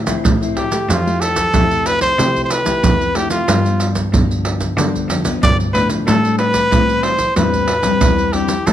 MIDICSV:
0, 0, Header, 1, 6, 480
1, 0, Start_track
1, 0, Tempo, 647948
1, 662, Time_signature, 4, 2, 24, 8
1, 6466, End_track
2, 0, Start_track
2, 0, Title_t, "Trumpet"
2, 0, Program_c, 0, 56
2, 417, Note_on_c, 0, 67, 71
2, 668, Note_on_c, 0, 65, 72
2, 679, Note_off_c, 0, 67, 0
2, 893, Note_on_c, 0, 69, 83
2, 904, Note_off_c, 0, 65, 0
2, 1380, Note_on_c, 0, 71, 93
2, 1391, Note_off_c, 0, 69, 0
2, 1488, Note_off_c, 0, 71, 0
2, 1493, Note_on_c, 0, 72, 90
2, 1783, Note_off_c, 0, 72, 0
2, 1808, Note_on_c, 0, 72, 72
2, 1861, Note_on_c, 0, 71, 99
2, 1872, Note_off_c, 0, 72, 0
2, 2343, Note_on_c, 0, 67, 80
2, 2354, Note_off_c, 0, 71, 0
2, 2446, Note_off_c, 0, 67, 0
2, 2450, Note_on_c, 0, 65, 69
2, 2906, Note_off_c, 0, 65, 0
2, 4020, Note_on_c, 0, 74, 92
2, 4128, Note_off_c, 0, 74, 0
2, 4244, Note_on_c, 0, 71, 78
2, 4356, Note_off_c, 0, 71, 0
2, 4498, Note_on_c, 0, 69, 75
2, 4722, Note_off_c, 0, 69, 0
2, 4730, Note_on_c, 0, 71, 85
2, 5207, Note_on_c, 0, 72, 86
2, 5219, Note_off_c, 0, 71, 0
2, 5454, Note_off_c, 0, 72, 0
2, 5459, Note_on_c, 0, 71, 81
2, 6169, Note_on_c, 0, 67, 74
2, 6180, Note_off_c, 0, 71, 0
2, 6418, Note_on_c, 0, 69, 74
2, 6429, Note_off_c, 0, 67, 0
2, 6466, Note_off_c, 0, 69, 0
2, 6466, End_track
3, 0, Start_track
3, 0, Title_t, "Nylon-string guitar"
3, 0, Program_c, 1, 24
3, 0, Note_on_c, 1, 50, 49
3, 48, Note_on_c, 1, 53, 59
3, 51, Note_on_c, 1, 60, 55
3, 54, Note_on_c, 1, 64, 63
3, 161, Note_off_c, 1, 50, 0
3, 190, Note_on_c, 1, 45, 49
3, 257, Note_off_c, 1, 53, 0
3, 258, Note_off_c, 1, 60, 0
3, 260, Note_off_c, 1, 64, 0
3, 309, Note_on_c, 1, 53, 57
3, 313, Note_on_c, 1, 60, 62
3, 318, Note_on_c, 1, 64, 58
3, 508, Note_off_c, 1, 53, 0
3, 508, Note_off_c, 1, 60, 0
3, 509, Note_off_c, 1, 64, 0
3, 531, Note_on_c, 1, 57, 59
3, 537, Note_on_c, 1, 67, 57
3, 642, Note_off_c, 1, 45, 0
3, 661, Note_on_c, 1, 53, 55
3, 778, Note_off_c, 1, 57, 0
3, 785, Note_off_c, 1, 67, 0
3, 787, Note_on_c, 1, 57, 53
3, 791, Note_on_c, 1, 64, 58
3, 794, Note_on_c, 1, 67, 56
3, 1106, Note_off_c, 1, 57, 0
3, 1108, Note_off_c, 1, 64, 0
3, 1109, Note_off_c, 1, 67, 0
3, 1117, Note_off_c, 1, 53, 0
3, 1140, Note_on_c, 1, 57, 52
3, 1141, Note_on_c, 1, 48, 52
3, 1143, Note_on_c, 1, 64, 53
3, 1147, Note_on_c, 1, 67, 58
3, 1582, Note_off_c, 1, 57, 0
3, 1584, Note_off_c, 1, 67, 0
3, 1585, Note_off_c, 1, 64, 0
3, 1597, Note_off_c, 1, 48, 0
3, 1616, Note_on_c, 1, 53, 52
3, 1620, Note_on_c, 1, 57, 57
3, 1622, Note_on_c, 1, 64, 51
3, 1627, Note_on_c, 1, 67, 58
3, 1941, Note_off_c, 1, 57, 0
3, 1943, Note_off_c, 1, 64, 0
3, 1944, Note_off_c, 1, 67, 0
3, 1960, Note_on_c, 1, 57, 60
3, 1963, Note_on_c, 1, 64, 53
3, 1965, Note_on_c, 1, 67, 69
3, 2075, Note_off_c, 1, 53, 0
3, 2098, Note_on_c, 1, 48, 52
3, 2292, Note_off_c, 1, 57, 0
3, 2293, Note_off_c, 1, 64, 0
3, 2295, Note_off_c, 1, 67, 0
3, 2328, Note_on_c, 1, 57, 56
3, 2333, Note_on_c, 1, 64, 56
3, 2335, Note_on_c, 1, 67, 58
3, 2555, Note_off_c, 1, 48, 0
3, 2556, Note_off_c, 1, 57, 0
3, 2557, Note_off_c, 1, 64, 0
3, 2559, Note_off_c, 1, 67, 0
3, 2576, Note_on_c, 1, 43, 57
3, 2577, Note_on_c, 1, 53, 51
3, 2580, Note_on_c, 1, 59, 56
3, 2582, Note_on_c, 1, 62, 59
3, 2660, Note_off_c, 1, 53, 0
3, 2660, Note_off_c, 1, 59, 0
3, 2663, Note_off_c, 1, 62, 0
3, 2697, Note_on_c, 1, 53, 51
3, 2700, Note_on_c, 1, 59, 52
3, 2703, Note_on_c, 1, 62, 54
3, 3021, Note_off_c, 1, 53, 0
3, 3021, Note_off_c, 1, 59, 0
3, 3024, Note_off_c, 1, 62, 0
3, 3035, Note_off_c, 1, 43, 0
3, 3061, Note_on_c, 1, 50, 50
3, 3063, Note_on_c, 1, 53, 54
3, 3064, Note_on_c, 1, 59, 55
3, 3068, Note_on_c, 1, 62, 60
3, 3503, Note_off_c, 1, 53, 0
3, 3504, Note_off_c, 1, 59, 0
3, 3505, Note_off_c, 1, 62, 0
3, 3517, Note_off_c, 1, 50, 0
3, 3537, Note_on_c, 1, 43, 52
3, 3543, Note_on_c, 1, 53, 49
3, 3545, Note_on_c, 1, 59, 57
3, 3546, Note_on_c, 1, 62, 53
3, 3862, Note_off_c, 1, 59, 0
3, 3863, Note_off_c, 1, 53, 0
3, 3865, Note_off_c, 1, 62, 0
3, 3887, Note_on_c, 1, 53, 62
3, 3891, Note_on_c, 1, 59, 57
3, 3895, Note_on_c, 1, 62, 61
3, 3996, Note_off_c, 1, 43, 0
3, 4018, Note_on_c, 1, 50, 51
3, 4215, Note_off_c, 1, 53, 0
3, 4218, Note_off_c, 1, 59, 0
3, 4218, Note_off_c, 1, 62, 0
3, 4253, Note_on_c, 1, 53, 57
3, 4257, Note_on_c, 1, 59, 48
3, 4259, Note_on_c, 1, 62, 57
3, 4475, Note_off_c, 1, 50, 0
3, 4478, Note_off_c, 1, 53, 0
3, 4480, Note_off_c, 1, 59, 0
3, 4480, Note_off_c, 1, 62, 0
3, 4505, Note_on_c, 1, 45, 53
3, 4506, Note_on_c, 1, 55, 54
3, 4508, Note_on_c, 1, 60, 59
3, 4511, Note_on_c, 1, 62, 58
3, 4584, Note_off_c, 1, 55, 0
3, 4586, Note_off_c, 1, 60, 0
3, 4587, Note_off_c, 1, 62, 0
3, 4627, Note_on_c, 1, 55, 48
3, 4630, Note_on_c, 1, 60, 52
3, 4633, Note_on_c, 1, 62, 55
3, 4945, Note_off_c, 1, 55, 0
3, 4947, Note_off_c, 1, 60, 0
3, 4948, Note_off_c, 1, 62, 0
3, 4959, Note_off_c, 1, 45, 0
3, 4979, Note_on_c, 1, 52, 53
3, 4981, Note_on_c, 1, 55, 51
3, 4985, Note_on_c, 1, 60, 56
3, 4987, Note_on_c, 1, 62, 50
3, 5290, Note_off_c, 1, 55, 0
3, 5291, Note_off_c, 1, 60, 0
3, 5293, Note_off_c, 1, 62, 0
3, 5437, Note_off_c, 1, 52, 0
3, 5461, Note_on_c, 1, 45, 51
3, 5463, Note_on_c, 1, 55, 53
3, 5468, Note_on_c, 1, 60, 56
3, 5468, Note_on_c, 1, 62, 62
3, 5687, Note_off_c, 1, 55, 0
3, 5688, Note_off_c, 1, 60, 0
3, 5689, Note_off_c, 1, 62, 0
3, 5813, Note_on_c, 1, 55, 65
3, 5817, Note_on_c, 1, 60, 62
3, 5817, Note_on_c, 1, 62, 66
3, 5917, Note_off_c, 1, 45, 0
3, 5944, Note_on_c, 1, 52, 52
3, 6139, Note_off_c, 1, 55, 0
3, 6140, Note_off_c, 1, 60, 0
3, 6141, Note_off_c, 1, 62, 0
3, 6176, Note_on_c, 1, 55, 54
3, 6181, Note_on_c, 1, 60, 61
3, 6184, Note_on_c, 1, 62, 59
3, 6320, Note_off_c, 1, 55, 0
3, 6322, Note_off_c, 1, 60, 0
3, 6324, Note_off_c, 1, 62, 0
3, 6398, Note_off_c, 1, 52, 0
3, 6427, Note_on_c, 1, 45, 54
3, 6429, Note_on_c, 1, 53, 58
3, 6432, Note_on_c, 1, 64, 63
3, 6435, Note_on_c, 1, 60, 54
3, 6466, Note_off_c, 1, 45, 0
3, 6466, Note_off_c, 1, 53, 0
3, 6466, Note_off_c, 1, 60, 0
3, 6466, Note_off_c, 1, 64, 0
3, 6466, End_track
4, 0, Start_track
4, 0, Title_t, "Cello"
4, 0, Program_c, 2, 42
4, 0, Note_on_c, 2, 45, 95
4, 111, Note_off_c, 2, 45, 0
4, 181, Note_on_c, 2, 45, 77
4, 589, Note_off_c, 2, 45, 0
4, 660, Note_on_c, 2, 41, 93
4, 1068, Note_off_c, 2, 41, 0
4, 1142, Note_on_c, 2, 41, 75
4, 1550, Note_off_c, 2, 41, 0
4, 1620, Note_on_c, 2, 48, 96
4, 2028, Note_off_c, 2, 48, 0
4, 2101, Note_on_c, 2, 41, 75
4, 2509, Note_off_c, 2, 41, 0
4, 2579, Note_on_c, 2, 43, 96
4, 2987, Note_off_c, 2, 43, 0
4, 3058, Note_on_c, 2, 43, 76
4, 3467, Note_off_c, 2, 43, 0
4, 3536, Note_on_c, 2, 50, 92
4, 3742, Note_off_c, 2, 50, 0
4, 3766, Note_on_c, 2, 41, 69
4, 3989, Note_off_c, 2, 41, 0
4, 4017, Note_on_c, 2, 43, 76
4, 4235, Note_off_c, 2, 43, 0
4, 4248, Note_on_c, 2, 45, 71
4, 4470, Note_off_c, 2, 45, 0
4, 4498, Note_on_c, 2, 45, 97
4, 4907, Note_off_c, 2, 45, 0
4, 4978, Note_on_c, 2, 45, 80
4, 5387, Note_off_c, 2, 45, 0
4, 5459, Note_on_c, 2, 40, 91
4, 5867, Note_off_c, 2, 40, 0
4, 5940, Note_on_c, 2, 40, 80
4, 6348, Note_off_c, 2, 40, 0
4, 6420, Note_on_c, 2, 45, 91
4, 6466, Note_off_c, 2, 45, 0
4, 6466, End_track
5, 0, Start_track
5, 0, Title_t, "Pandeiro"
5, 50, Note_on_c, 9, 54, 58
5, 124, Note_off_c, 9, 54, 0
5, 185, Note_on_c, 9, 54, 75
5, 259, Note_off_c, 9, 54, 0
5, 316, Note_on_c, 9, 54, 30
5, 390, Note_off_c, 9, 54, 0
5, 420, Note_on_c, 9, 54, 58
5, 494, Note_off_c, 9, 54, 0
5, 532, Note_on_c, 9, 54, 54
5, 606, Note_off_c, 9, 54, 0
5, 667, Note_on_c, 9, 54, 76
5, 741, Note_off_c, 9, 54, 0
5, 796, Note_on_c, 9, 54, 32
5, 870, Note_off_c, 9, 54, 0
5, 901, Note_on_c, 9, 54, 62
5, 975, Note_off_c, 9, 54, 0
5, 1009, Note_on_c, 9, 54, 54
5, 1083, Note_off_c, 9, 54, 0
5, 1139, Note_on_c, 9, 54, 72
5, 1213, Note_off_c, 9, 54, 0
5, 1269, Note_on_c, 9, 54, 31
5, 1343, Note_off_c, 9, 54, 0
5, 1377, Note_on_c, 9, 54, 60
5, 1451, Note_off_c, 9, 54, 0
5, 1490, Note_on_c, 9, 54, 49
5, 1564, Note_off_c, 9, 54, 0
5, 1624, Note_on_c, 9, 54, 68
5, 1698, Note_off_c, 9, 54, 0
5, 1751, Note_on_c, 9, 54, 32
5, 1825, Note_off_c, 9, 54, 0
5, 1856, Note_on_c, 9, 54, 65
5, 1930, Note_off_c, 9, 54, 0
5, 1971, Note_on_c, 9, 54, 58
5, 2045, Note_off_c, 9, 54, 0
5, 2102, Note_on_c, 9, 54, 77
5, 2176, Note_off_c, 9, 54, 0
5, 2231, Note_on_c, 9, 54, 32
5, 2305, Note_off_c, 9, 54, 0
5, 2334, Note_on_c, 9, 54, 62
5, 2408, Note_off_c, 9, 54, 0
5, 2447, Note_on_c, 9, 54, 56
5, 2521, Note_off_c, 9, 54, 0
5, 2581, Note_on_c, 9, 54, 81
5, 2655, Note_off_c, 9, 54, 0
5, 2709, Note_on_c, 9, 54, 30
5, 2783, Note_off_c, 9, 54, 0
5, 2815, Note_on_c, 9, 54, 56
5, 2889, Note_off_c, 9, 54, 0
5, 2929, Note_on_c, 9, 54, 51
5, 3003, Note_off_c, 9, 54, 0
5, 3065, Note_on_c, 9, 54, 68
5, 3139, Note_off_c, 9, 54, 0
5, 3193, Note_on_c, 9, 54, 32
5, 3267, Note_off_c, 9, 54, 0
5, 3296, Note_on_c, 9, 54, 64
5, 3370, Note_off_c, 9, 54, 0
5, 3412, Note_on_c, 9, 54, 49
5, 3486, Note_off_c, 9, 54, 0
5, 3543, Note_on_c, 9, 54, 73
5, 3617, Note_off_c, 9, 54, 0
5, 3671, Note_on_c, 9, 54, 29
5, 3745, Note_off_c, 9, 54, 0
5, 3777, Note_on_c, 9, 54, 65
5, 3851, Note_off_c, 9, 54, 0
5, 3889, Note_on_c, 9, 54, 57
5, 3963, Note_off_c, 9, 54, 0
5, 4024, Note_on_c, 9, 54, 76
5, 4098, Note_off_c, 9, 54, 0
5, 4148, Note_on_c, 9, 54, 30
5, 4222, Note_off_c, 9, 54, 0
5, 4258, Note_on_c, 9, 54, 60
5, 4332, Note_off_c, 9, 54, 0
5, 4367, Note_on_c, 9, 54, 52
5, 4441, Note_off_c, 9, 54, 0
5, 4502, Note_on_c, 9, 54, 75
5, 4576, Note_off_c, 9, 54, 0
5, 4628, Note_on_c, 9, 54, 31
5, 4702, Note_off_c, 9, 54, 0
5, 4731, Note_on_c, 9, 54, 58
5, 4805, Note_off_c, 9, 54, 0
5, 4844, Note_on_c, 9, 54, 53
5, 4918, Note_off_c, 9, 54, 0
5, 4980, Note_on_c, 9, 54, 71
5, 5054, Note_off_c, 9, 54, 0
5, 5105, Note_on_c, 9, 54, 31
5, 5179, Note_off_c, 9, 54, 0
5, 5209, Note_on_c, 9, 54, 60
5, 5283, Note_off_c, 9, 54, 0
5, 5322, Note_on_c, 9, 54, 50
5, 5396, Note_off_c, 9, 54, 0
5, 5456, Note_on_c, 9, 54, 71
5, 5530, Note_off_c, 9, 54, 0
5, 5583, Note_on_c, 9, 54, 32
5, 5657, Note_off_c, 9, 54, 0
5, 5687, Note_on_c, 9, 54, 64
5, 5761, Note_off_c, 9, 54, 0
5, 5801, Note_on_c, 9, 54, 58
5, 5875, Note_off_c, 9, 54, 0
5, 5934, Note_on_c, 9, 54, 77
5, 6008, Note_off_c, 9, 54, 0
5, 6062, Note_on_c, 9, 54, 28
5, 6136, Note_off_c, 9, 54, 0
5, 6171, Note_on_c, 9, 54, 58
5, 6246, Note_off_c, 9, 54, 0
5, 6285, Note_on_c, 9, 54, 56
5, 6359, Note_off_c, 9, 54, 0
5, 6423, Note_on_c, 9, 54, 80
5, 6466, Note_off_c, 9, 54, 0
5, 6466, End_track
6, 0, Start_track
6, 0, Title_t, "Drums"
6, 50, Note_on_c, 9, 82, 78
6, 50, Note_on_c, 9, 87, 33
6, 124, Note_off_c, 9, 82, 0
6, 124, Note_off_c, 9, 87, 0
6, 185, Note_on_c, 9, 82, 76
6, 185, Note_on_c, 9, 87, 93
6, 259, Note_off_c, 9, 82, 0
6, 259, Note_off_c, 9, 87, 0
6, 316, Note_on_c, 9, 82, 31
6, 390, Note_off_c, 9, 82, 0
6, 420, Note_on_c, 9, 87, 28
6, 494, Note_off_c, 9, 87, 0
6, 532, Note_on_c, 9, 82, 75
6, 606, Note_off_c, 9, 82, 0
6, 667, Note_on_c, 9, 82, 75
6, 667, Note_on_c, 9, 87, 55
6, 741, Note_off_c, 9, 82, 0
6, 741, Note_off_c, 9, 87, 0
6, 796, Note_on_c, 9, 82, 30
6, 870, Note_off_c, 9, 82, 0
6, 901, Note_on_c, 9, 82, 60
6, 975, Note_off_c, 9, 82, 0
6, 1009, Note_on_c, 9, 82, 75
6, 1009, Note_on_c, 9, 87, 32
6, 1083, Note_off_c, 9, 82, 0
6, 1083, Note_off_c, 9, 87, 0
6, 1139, Note_on_c, 9, 82, 72
6, 1139, Note_on_c, 9, 87, 88
6, 1213, Note_off_c, 9, 82, 0
6, 1213, Note_off_c, 9, 87, 0
6, 1269, Note_on_c, 9, 82, 31
6, 1343, Note_off_c, 9, 82, 0
6, 1377, Note_on_c, 9, 82, 60
6, 1451, Note_off_c, 9, 82, 0
6, 1490, Note_on_c, 9, 82, 67
6, 1490, Note_on_c, 9, 87, 29
6, 1564, Note_off_c, 9, 82, 0
6, 1564, Note_off_c, 9, 87, 0
6, 1624, Note_on_c, 9, 82, 68
6, 1624, Note_on_c, 9, 87, 52
6, 1698, Note_off_c, 9, 82, 0
6, 1698, Note_off_c, 9, 87, 0
6, 1751, Note_on_c, 9, 82, 31
6, 1751, Note_on_c, 9, 87, 30
6, 1825, Note_off_c, 9, 82, 0
6, 1825, Note_off_c, 9, 87, 0
6, 1856, Note_on_c, 9, 82, 66
6, 1930, Note_off_c, 9, 82, 0
6, 1971, Note_on_c, 9, 82, 79
6, 1971, Note_on_c, 9, 87, 32
6, 2045, Note_off_c, 9, 82, 0
6, 2045, Note_off_c, 9, 87, 0
6, 2102, Note_on_c, 9, 82, 71
6, 2102, Note_on_c, 9, 87, 101
6, 2176, Note_off_c, 9, 82, 0
6, 2176, Note_off_c, 9, 87, 0
6, 2231, Note_on_c, 9, 82, 29
6, 2305, Note_off_c, 9, 82, 0
6, 2447, Note_on_c, 9, 82, 76
6, 2521, Note_off_c, 9, 82, 0
6, 2581, Note_on_c, 9, 82, 78
6, 2581, Note_on_c, 9, 87, 57
6, 2655, Note_off_c, 9, 82, 0
6, 2655, Note_off_c, 9, 87, 0
6, 2709, Note_on_c, 9, 82, 31
6, 2783, Note_off_c, 9, 82, 0
6, 2815, Note_on_c, 9, 82, 60
6, 2889, Note_off_c, 9, 82, 0
6, 2929, Note_on_c, 9, 82, 71
6, 2929, Note_on_c, 9, 87, 31
6, 3003, Note_off_c, 9, 82, 0
6, 3003, Note_off_c, 9, 87, 0
6, 3065, Note_on_c, 9, 82, 76
6, 3065, Note_on_c, 9, 87, 92
6, 3139, Note_off_c, 9, 82, 0
6, 3139, Note_off_c, 9, 87, 0
6, 3193, Note_on_c, 9, 82, 33
6, 3267, Note_off_c, 9, 82, 0
6, 3412, Note_on_c, 9, 82, 68
6, 3412, Note_on_c, 9, 87, 30
6, 3486, Note_off_c, 9, 82, 0
6, 3486, Note_off_c, 9, 87, 0
6, 3543, Note_on_c, 9, 82, 76
6, 3543, Note_on_c, 9, 87, 50
6, 3617, Note_off_c, 9, 82, 0
6, 3617, Note_off_c, 9, 87, 0
6, 3671, Note_on_c, 9, 82, 32
6, 3671, Note_on_c, 9, 87, 29
6, 3745, Note_off_c, 9, 82, 0
6, 3745, Note_off_c, 9, 87, 0
6, 3777, Note_on_c, 9, 82, 71
6, 3851, Note_off_c, 9, 82, 0
6, 3889, Note_on_c, 9, 82, 77
6, 3889, Note_on_c, 9, 87, 32
6, 3963, Note_off_c, 9, 82, 0
6, 3963, Note_off_c, 9, 87, 0
6, 4024, Note_on_c, 9, 82, 77
6, 4024, Note_on_c, 9, 87, 99
6, 4098, Note_off_c, 9, 82, 0
6, 4098, Note_off_c, 9, 87, 0
6, 4148, Note_on_c, 9, 82, 29
6, 4222, Note_off_c, 9, 82, 0
6, 4258, Note_on_c, 9, 87, 28
6, 4332, Note_off_c, 9, 87, 0
6, 4367, Note_on_c, 9, 82, 71
6, 4441, Note_off_c, 9, 82, 0
6, 4502, Note_on_c, 9, 82, 75
6, 4502, Note_on_c, 9, 87, 55
6, 4576, Note_off_c, 9, 82, 0
6, 4576, Note_off_c, 9, 87, 0
6, 4628, Note_on_c, 9, 82, 30
6, 4702, Note_off_c, 9, 82, 0
6, 4844, Note_on_c, 9, 82, 73
6, 4844, Note_on_c, 9, 87, 29
6, 4918, Note_off_c, 9, 82, 0
6, 4918, Note_off_c, 9, 87, 0
6, 4980, Note_on_c, 9, 82, 72
6, 4980, Note_on_c, 9, 87, 92
6, 5054, Note_off_c, 9, 82, 0
6, 5054, Note_off_c, 9, 87, 0
6, 5105, Note_on_c, 9, 82, 31
6, 5179, Note_off_c, 9, 82, 0
6, 5322, Note_on_c, 9, 82, 68
6, 5322, Note_on_c, 9, 87, 28
6, 5396, Note_off_c, 9, 82, 0
6, 5396, Note_off_c, 9, 87, 0
6, 5456, Note_on_c, 9, 82, 69
6, 5456, Note_on_c, 9, 87, 55
6, 5530, Note_off_c, 9, 82, 0
6, 5530, Note_off_c, 9, 87, 0
6, 5583, Note_on_c, 9, 82, 32
6, 5583, Note_on_c, 9, 87, 29
6, 5657, Note_off_c, 9, 82, 0
6, 5657, Note_off_c, 9, 87, 0
6, 5801, Note_on_c, 9, 82, 80
6, 5801, Note_on_c, 9, 87, 32
6, 5875, Note_off_c, 9, 82, 0
6, 5875, Note_off_c, 9, 87, 0
6, 5934, Note_on_c, 9, 82, 78
6, 5934, Note_on_c, 9, 87, 95
6, 6008, Note_off_c, 9, 82, 0
6, 6008, Note_off_c, 9, 87, 0
6, 6062, Note_on_c, 9, 82, 31
6, 6136, Note_off_c, 9, 82, 0
6, 6171, Note_on_c, 9, 87, 30
6, 6246, Note_off_c, 9, 87, 0
6, 6285, Note_on_c, 9, 82, 75
6, 6359, Note_off_c, 9, 82, 0
6, 6423, Note_on_c, 9, 82, 77
6, 6423, Note_on_c, 9, 87, 58
6, 6466, Note_off_c, 9, 82, 0
6, 6466, Note_off_c, 9, 87, 0
6, 6466, End_track
0, 0, End_of_file